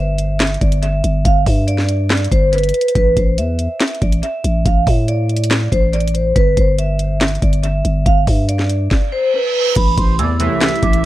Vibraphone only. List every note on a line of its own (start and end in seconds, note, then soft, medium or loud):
0.00 0.58 E5 medium
0.61 0.78 D5 medium
0.82 1.22 E5 medium
1.25 1.42 F5 loud
1.46 1.63 E5 medium
1.68 2.28 D5 medium
2.31 2.48 C5 medium
2.53 2.93 B4 medium
2.96 3.12 B4 loud
3.17 3.33 C5 medium
3.38 3.98 E5 medium
4.02 4.19 D5 medium
4.23 4.63 E5 medium
4.66 4.82 F5 medium
4.87 5.04 E5 medium
5.08 5.68 D5 medium
5.72 5.89 C5 medium
5.93 6.10 D5 medium
6.14 6.31 C5 medium
6.36 6.52 B4 loud
6.57 6.74 C5 medium
6.79 7.38 E5 medium
7.42 7.59 D5 medium
7.63 8.03 E5 medium
8.06 8.23 F5 loud
8.27 8.44 E5 medium
8.48 9.08 D5 medium
9.12 9.29 C5 loud
9.34 9.74 B4 medium
9.77 9.93 B5 loud
9.98 10.14 C6 medium
10.19 10.79 E6 medium
10.83 11.00 D6 medium